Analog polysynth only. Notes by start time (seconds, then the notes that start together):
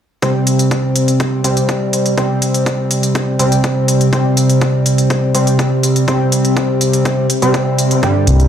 0.22 C3 G3 C4
1.44 C3 G3 C4
2.18 C3 G3 C4
3.39 C3 G3 C4
4.13 C3 G3 C4
5.35 C3 G3 C4
6.08 C3 G3 C4
7.42 C3 G3 C4
8.03 G2 D3 G3